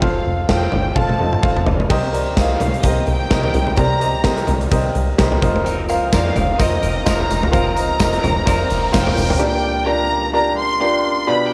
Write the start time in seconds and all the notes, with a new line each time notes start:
0.02 F1 F4 A4 C5 F5, kick
0.26 F1
0.49 F1 F4 A4 C5 F5 G5, kick, snare
0.72 G1, floor tom
0.95 F1 F4 A4 C5 F5 A5, kick, high tom
1.09 high tom
1.19 F1 F4 A4 C5 D#5
1.33 mid tom
1.42 F1 F4 A4 C5 F5, kick
1.57 mid tom
1.67 F1, floor tom
1.80 floor tom
1.90 C2 C3 G4 A#4 C5 D#5, kick, crash
2.13 G4 A#4 C5 D5, closed hi-hat
2.37 C2 G4 A#4 C5 D#5 F5, kick, snare, closed hi-hat
2.60 C2, closed hi-hat, floor tom
2.74 closed hi-hat
2.83 C2 G4 A#4 C5 D#5, kick, closed hi-hat
3.07 C2 G5, closed hi-hat
3.30 C2 G4 A#4 C5 D#5, kick, snare, closed hi-hat
3.43 floor tom
3.54 C2, closed hi-hat
3.67 floor tom
3.76 C2 C3 G4 A#4 C5 D5 A#5, kick, closed hi-hat
4.00 G4 A#4 C5 D#5, closed hi-hat
4.24 C2 G4 A#4 C5 D#5, kick, snare, closed hi-hat
4.37 closed hi-hat
4.47 C2, closed hi-hat, floor tom
4.61 closed hi-hat
4.71 C2 G4 A#4 C5 D#5, kick, closed hi-hat
4.95 C2, closed hi-hat
5.18 C2 G4 A#4 C5 D#5, kick, snare, closed hi-hat
5.32 floor tom
5.41 F1 F4 A#4 C5 D#5, kick, closed hi-hat
5.56 floor tom
5.64 F3 C4 D#4 A#4, closed hi-hat, tambourine
5.88 C4 D#4 F4 A#4 C5 F5, closed hi-hat, tambourine
6.12 F1 F3 C4 D#4 F4 A#4 C5 D5 F5, kick, snare, closed hi-hat, tambourine
6.36 F1 C4 D#4 A#4, closed hi-hat, floor tom, tambourine
6.58 F1 F3 C4 D#4 F4 A#4 C5 D#5, kick, closed hi-hat, tambourine
6.82 F1 C4 D#4 A#4, closed hi-hat, tambourine
7.04 F1 F3 C4 D#4 F4 A#4 C5 D#5 A#5, kick, snare, closed hi-hat, tambourine
7.20 floor tom
7.29 F1 C4 D#4 A#4, closed hi-hat, tambourine
7.43 floor tom
7.51 F1 F3 C4 D#4 F4 A#4 C5 F5 A#5, kick, closed hi-hat, riser
7.75 C4 D#4 F4 A#4 C5 D#5, closed hi-hat, tambourine
7.99 F1 F3 C4 D#4 F4 A#4 C5 D#5, kick, snare, closed hi-hat, tambourine
8.13 closed hi-hat
8.23 F1 C4 D#4 A#4, closed hi-hat, floor tom
8.45 F1 F3 C4 D#4 F4 A#4 C5 D5, kick, closed hi-hat, tambourine
8.70 F1 C4 D#4 A#4, closed hi-hat, tambourine
8.92 F1 F3 C4 D#4 F4 A#4 C5 F5 G5, kick, snare, closed hi-hat, tambourine
9.07 floor tom
9.17 F1 C4 D#4 A#4, closed hi-hat, tambourine
9.30 floor tom
9.39 A#2 D4 F4 G4 A#4 D5 G5
9.86 D4 F4 G4 A#4 D5 A#5
10.33 D4 F4 G4 A#4 D5 A#5
10.58 C6
10.80 D4 F4 G4 A#4 D5
11.27 B2 D4 F4 G4 B4 D5 B5